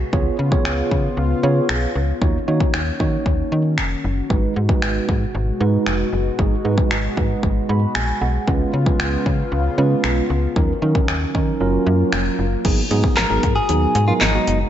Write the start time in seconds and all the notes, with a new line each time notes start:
0.13 C#2 C#3 B3 F4 G#4 C#5, kick
0.39 C#3
0.52 B3 F4 G#4 C#5, kick
0.65 C#2, finger snap
0.91 C#3, kick
1.17 C#2
1.43 C#3 B3 F4 G#4 C#5
1.69 B1, finger snap
1.95 C#2
2.21 D#2 D#3 A#3 C#4 D#4 F#4 C#5, kick
2.47 D#3 A#3 D#4 F#4 C#5
2.60 kick
2.74 D#2, finger snap
2.99 D#3 A#3 D#4 F#4 C#5, kick
3.26 D#2, kick
3.52 D#3
3.78 F1, finger snap
4.04 F#1
4.30 G#1 B2 G#3 D#4 F#4 B4, kick
4.56 G#2
4.69 G#3 D#4 F#4 B4, kick
4.82 G#1, finger snap
5.09 G#2, kick
5.35 G#1
5.60 G#2 G#3 D#4 F#4 B4
5.86 F1, finger snap
6.13 F#1
6.38 G#1 G#3 D#4 F#4 G#4, kick
6.64 G#2 G#3 D#4 F#4 B4
6.78 kick
6.91 G#1, finger snap
7.17 G#2 G#3 D#4 F#4 B4, kick
7.43 G#1, kick
7.69 G#2 B5
7.95 A#1 G#5, finger snap
8.21 B1 F#5
8.47 C#2 C#3 G#3 B3 C#4 F4 B4, kick
8.73 C#3
8.86 G#3 C#4 F4 B4, kick
8.99 C#2, finger snap
9.26 C#3, kick
9.52 C#2
9.78 C#3 G#3 C#4 F4 B4
10.04 B1, finger snap
10.30 C#2
10.56 D#2 D#3 F#3 C#4 D#4 A#4, kick
10.82 D#3 F#3 C#4 D#4 A#4
10.95 kick
11.08 D#2, finger snap
11.34 D#3 F#3 C#4 D#4 A#4, kick
11.60 F#1 F#3 A#3 C#4 F4 A#4
11.86 F#2
12.13 F1, finger snap
12.39 F#1
12.65 G#1 B2 F#3 G#3 B3 D#4 F#4 G#4, kick, closed hi-hat, crash
12.91 G#2 F#3 B3 D#4 G#4, closed hi-hat
13.04 kick
13.17 G#1 A#4, snare, clap, closed hi-hat
13.30 G#1 F#3 B3 D#4 G#4
13.43 G#2, kick, closed hi-hat
13.56 G#4
13.69 D#2 F#3 B3 D#4 G#4, closed hi-hat
13.95 G#2, closed hi-hat
14.08 F#3 B3 D#4 F4 A#4
14.21 G#1 D#4, snare, clap, closed hi-hat
14.34 F#3 B3 D#4 F#4
14.47 F#1, closed hi-hat